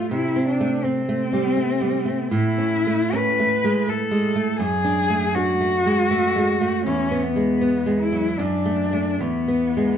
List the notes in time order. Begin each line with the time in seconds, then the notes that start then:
Already playing: A3 F4
0.11 C3 E4
0.36 C4
0.48 D4
0.60 A3
0.84 C4
1.09 A3
1.33 G3
1.57 A3
1.81 G3
2.05 A3
2.31 A2 E4
2.58 C#4
2.87 A3
3.13 C#4 B4
3.39 A3
3.64 G#3
3.88 A3 A4
4.11 G#3
4.36 A3
4.59 F#2 G#4
4.84 D4
5.10 A3
5.35 D4 F#4
5.61 A3
5.86 G#3
6.11 A3
6.36 G#3
6.61 A3
6.86 E2 C#4
7.11 B3
7.24 B3
7.36 G#3
7.61 B3
7.86 G#3
8.00 E4
8.12 F#3
8.38 F#2 D4
8.65 A3
8.93 A3
9.20 E2 B3
9.48 B3
9.77 G#3